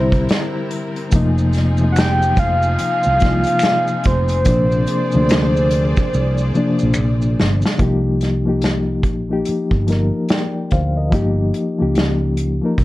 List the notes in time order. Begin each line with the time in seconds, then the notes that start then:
Already playing: C2 C3 D3 G3 C4 E4 A#4 C5
0.12 kick, closed hi-hat
0.29 snare, closed hi-hat
0.71 closed hi-hat
0.96 closed hi-hat
1.12 F1 C3 F3 A#3 D#4 G#4, kick, closed hi-hat, maracas
1.16 D#4
1.38 maracas
1.53 snare, closed hi-hat, maracas
1.77 C3 F3, maracas
1.82 A#3 D#4
1.92 F#5
1.96 G5, finger snap, snare, closed hi-hat, maracas
2.22 maracas
2.37 F1 F5, kick, closed hi-hat, maracas
2.62 maracas
2.79 muted fretless electric bass stroke, closed hi-hat, maracas
3.03 C2, maracas
3.20 C3 F3 A#3 D#4, kick, snare, closed hi-hat, maracas
3.30 F4
3.44 closed hi-hat, maracas
3.59 finger snap, closed hi-hat, maracas
3.64 snare
3.88 maracas
4.04 F1 C5, kick, closed hi-hat
4.28 closed hi-hat, maracas
4.45 A#1 C3 F3 A#3 D4 G#4 C5 D5, kick, closed hi-hat, maracas
4.72 maracas
4.87 closed hi-hat, maracas
5.12 D2 C3 F3, maracas
5.16 A#3 D4
5.29 finger snap, snare, closed hi-hat, maracas
5.57 maracas
5.71 closed hi-hat, maracas
5.97 kick, maracas
6.14 C2, maracas
6.38 maracas
6.54 C3 F3 A#3 D4, muted fretless electric bass stroke, maracas
6.79 A#1, maracas
6.94 finger snap, maracas
6.98 A#1
7.22 maracas
7.39 G1, snare
7.62 snare, maracas
7.78 C2 F3 A#3 D#4 G4, kick, closed hi-hat
8.21 snare, closed hi-hat
8.45 F3 A#3 D#4
8.49 G4
8.62 snare, closed hi-hat
9.03 A#1, kick, closed hi-hat
9.29 F3 A#3 D#4 G4
9.45 muted fretless electric bass stroke, closed hi-hat
9.71 G1, kick
9.87 F3 A#3 D#4 A#4, closed hi-hat
9.91 snare
10.29 D5 G5, snare, closed hi-hat
10.71 D2 C5 F5, kick, closed hi-hat
10.97 A#4 D#5
11.10 G1 F3 A#3 D#4, kick, closed hi-hat
11.15 G4
11.54 closed hi-hat
11.78 C#2 F3 A#3 D#4 G4
11.95 snare, closed hi-hat
12.37 closed hi-hat
12.61 F3 A#3 D#4
12.66 A#4
12.78 C2, kick, closed hi-hat